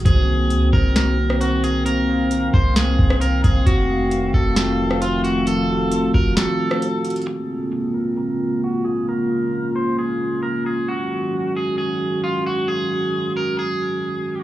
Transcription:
Already playing: D#3 F#4
0.05 C2 A#3 C4 G#4 C5, kick, closed hi-hat
0.50 C#2, closed hi-hat
0.73 C2 A#4 C5, kick
0.96 A#4, snare, closed hi-hat
1.18 C4
1.30 cross-stick
1.40 F#4 C5, closed hi-hat
1.64 G#4 A#4, closed hi-hat
1.86 C4 A#4 F5, closed hi-hat
2.09 C5
2.31 A#4, closed hi-hat
2.54 C2 C4 C5, kick
2.76 G#4 C5, snare, closed hi-hat
2.99 C2, kick
3.10 cross-stick
3.21 A#4, closed hi-hat
3.44 C2 G#4 C5, kick, closed hi-hat
3.66 F1 D#3 A3 F#4, kick, closed hi-hat
4.11 closed hi-hat
4.34 F1 F#4 A4, kick
4.56 F4 A4, snare, closed hi-hat
4.79 F3
4.91 cross-stick
5.01 F4 F#4, closed hi-hat
5.24 F4 F#4, closed hi-hat
5.46 F3 A4, closed hi-hat
5.69 F#4
5.92 F4, closed hi-hat
6.14 F1 F3 A#4, kick
6.37 F#4 A4, snare, closed hi-hat
6.71 cross-stick
6.82 closed hi-hat
7.05 F#4, closed hi-hat
7.10 closed hi-hat
7.16 closed hi-hat
7.22 closed hi-hat
7.27 C#3 G#3 A#3 C4 F4 G#4
7.94 A#4
8.18 A#4
8.64 F#4
8.85 G#4
9.08 C#4 A#4
9.76 C5
9.99 G#4
10.43 A#4
10.66 G#4
10.88 D#3 F#3 G#3 F#4
11.56 G#4
11.78 G#4
12.24 F4
12.46 F#4
12.68 G#4
13.37 A#4
13.59 G#4

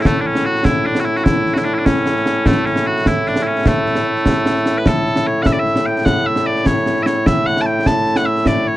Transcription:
Already playing: A2 A3 E4
0.02 E4, concert bass drum, snare
0.06 A3
0.21 D4
0.26 C#4
0.35 snare
0.45 F#4
0.55 snare
0.65 E4, concert bass drum, snare
0.86 D4
0.95 snare
1.00 F#4
1.05 E4
1.16 F#4, snare
1.24 E4, concert bass drum, snare
1.46 snare
1.54 F#4, snare
1.58 E4
1.65 D4
1.74 E4
1.78 D4
1.85 C#4, concert bass drum, snare
1.96 snare
2.06 snare
2.16 snare
2.26 snare
2.46 A3, concert bass drum, snare
2.66 C#4, snare
2.76 snare
2.86 F#4
2.96 snare
3.06 E4, concert bass drum, snare
3.26 D4, snare
3.36 snare
3.43 E4
3.47 C#4
3.56 snare
3.66 A3, concert bass drum, snare
3.86 snare
3.95 snare
4.16 snare
4.26 concert bass drum, snare
4.36 snare
4.46 snare
4.56 snare
4.66 snare
4.78 B4
4.86 A4, concert bass drum, snare
5.06 snare
5.16 snare
5.27 C#5
5.42 F#5, concert bass drum, snare
5.46 E5
5.53 D5
5.59 E5
5.65 snare
5.76 snare
5.86 G5
5.96 snare
6.05 F#5, concert bass drum, snare
6.26 E5
6.36 snare
6.46 D5
6.56 snare
6.66 C#5, concert bass drum, snare
6.76 snare
6.86 snare
6.96 snare
7.03 C#5 E5, snare
7.26 E5, concert bass drum, snare
7.46 F#5, snare
7.57 snare
7.61 A5
7.66 G5
7.86 A5, concert bass drum, snare
8.06 snare
8.16 F#5, snare
8.26 E5
8.36 snare
8.46 D5, concert bass drum, snare
8.67 C#5

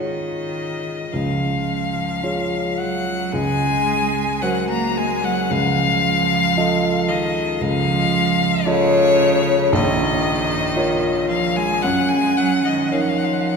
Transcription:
Already playing: G#2
0.00 D#3 F4 G#4 C#5 D#5
1.12 C#2 F3 F5
2.23 F4 G#4 C#5
2.77 F#3 F#5
3.32 C#2 G#3 G#5
4.41 F#3 F#4 A#4 C5 F#5
4.69 A#3 A#5
4.96 G#3 G#5
5.23 F#3 F#5
5.50 C#2 F3 F5
6.57 F4 A4 D#5
7.08 D#3 D#5
7.60 C#2 F3 F5
8.66 C#3 F4 A4 C#5 D#5
9.72 A#1 D#3 D#5
10.76 F4 A#4 C#5
11.29 F3 F5
11.56 G#3 G#5
11.82 F#2 F#3 F#5
12.09 G#3 G#5
12.37 F#3 F#5
12.64 D#3 D#5
12.91 F3 D#4 A#4 C#5 F5
13.01 F#5
13.08 F5
13.17 F#5
13.24 F5
13.33 F#5
13.40 F5
13.48 F#5

